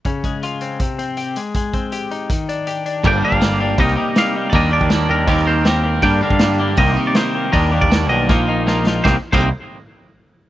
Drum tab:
CC |----------------|----------------|x---------------|----------------|
HH |x-x-x-x-x-x-x-x-|x-x-x-x-x-x-x-x-|----o---o---o---|o---o---o---o---|
SD |----------------|----------------|----o----o--o---|----o----o--o---|
BD |o-o-----o-------|o-o-----o-------|o--o----o-------|o--o----o-------|

CC |----------------|----------------|---x------------|
HH |o---o---o---o---|o---o-----------|----------------|
SD |----o----o--o---|----o---o---o-o-|o---------------|
BD |o--o----o-------|o--o----o-------|o--o------------|